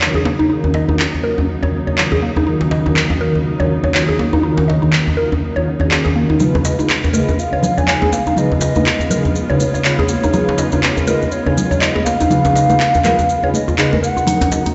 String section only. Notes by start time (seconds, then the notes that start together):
Already playing: C#3 F#3 A#3 D#4
6.41 C#3 G#3 B3 F4
14.26 C#3 F#3 A#3 D#4